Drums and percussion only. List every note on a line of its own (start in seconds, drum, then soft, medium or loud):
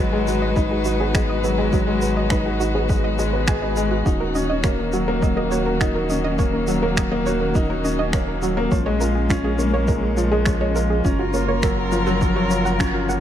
0.27 shaker medium
0.56 kick loud
0.56 shaker medium
0.85 shaker medium
1.15 finger snap medium
1.15 kick loud
1.15 shaker medium
1.44 shaker medium
1.73 kick loud
1.73 shaker medium
2.02 shaker medium
2.30 finger snap loud
2.30 kick loud
2.30 shaker medium
2.61 shaker medium
2.89 kick loud
2.89 shaker medium
3.19 shaker medium
3.47 finger snap loud
3.47 kick loud
3.47 shaker medium
3.77 shaker medium
4.06 kick loud
4.06 shaker medium
4.35 shaker medium
4.64 finger snap medium
4.64 kick loud
4.64 shaker medium
4.93 shaker medium
5.22 kick loud
5.22 shaker medium
5.52 shaker medium
5.81 finger snap medium
5.81 kick loud
5.81 shaker medium
6.10 shaker medium
6.39 kick loud
6.39 shaker medium
6.67 shaker medium
6.97 finger snap loud
6.97 kick loud
6.97 shaker medium
7.26 shaker medium
7.55 kick loud
7.55 shaker medium
7.85 shaker medium
8.13 finger snap loud
8.13 kick loud
8.13 shaker medium
8.42 shaker medium
8.72 kick loud
8.72 shaker medium
9.01 shaker medium
9.30 finger snap medium
9.30 kick medium
9.30 shaker medium
9.59 shaker medium
9.88 kick loud
9.88 shaker medium
10.17 shaker medium
10.46 finger snap medium
10.46 kick loud
10.46 shaker medium
10.76 shaker medium
11.05 kick loud
11.05 shaker medium
11.34 shaker medium
11.63 finger snap medium
11.63 kick loud
11.63 shaker medium
11.92 shaker medium
12.06 shaker soft
12.21 kick loud
12.21 shaker medium
12.50 shaker medium
12.66 shaker medium
12.80 finger snap loud
12.80 kick loud
12.80 shaker medium
13.10 shaker medium